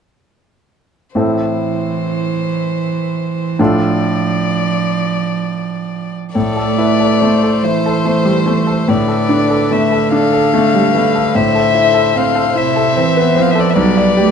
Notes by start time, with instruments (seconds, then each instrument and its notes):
1.15 grand piano A2 C4 E4 A4, cello E3, violin C5
3.59 grand piano A2 D4 F4 A4, cello F3, violin D5
6.35 grand piano A2, cello A3, violin A4 D5
6.56 grand piano A4
6.78 grand piano E4, violin B4
7.00 grand piano A4
7.20 grand piano A3, violin C5
7.43 grand piano A4
7.63 cello E3, grand piano E4, violin C5
7.86 grand piano A4
8.05 grand piano A3
8.25 grand piano G3
8.46 grand piano A3
8.67 grand piano A4
8.87 grand piano A2, cello D3, violin B4 D5
9.08 grand piano A4
9.29 grand piano D4
9.50 grand piano A4
9.71 grand piano A3, violin E5
9.92 grand piano A4
10.12 grand piano D4, violin A4 F5
10.32 grand piano A4
10.54 grand piano A3, violin A4
10.74 grand piano G3
10.95 grand piano A3, violin B4
11.15 grand piano A4
11.35 grand piano A2, violin C5 E5
11.55 grand piano A4
11.74 grand piano E4
11.94 grand piano A4
12.15 grand piano C4, violin F5
12.35 grand piano A4
12.55 cello C3, grand piano E4, violin C5 E5
12.76 grand piano A4
12.96 cello E3, grand piano C4
13.17 grand piano B3
13.36 cello F3, grand piano C4
13.42 violin F5
13.51 grand piano A4, violin E5
13.60 violin D5
13.70 violin E5
13.76 grand piano B1, cello G3, violin B4 D5
13.97 grand piano D5
14.17 cello A3, grand piano G4